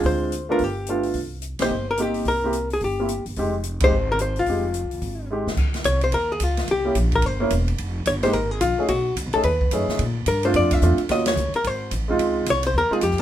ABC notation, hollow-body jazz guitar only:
X:1
M:4/4
L:1/8
Q:"Swing" 1/4=217
K:Fm
V:1 name="Hollow-body jazz guitar"
c3 B G3 z | z3 c2 B G2 | B3 A G3 z | z3 c2 B c F- |
F6 z2 | z2 d c B A F2 | G2 z B c3 z | z2 d c B A F2 |
^F2 z =A =B3 z | z2 B c =d =e2 z | e d2 B c2 z2 | z2 d c B A G z |]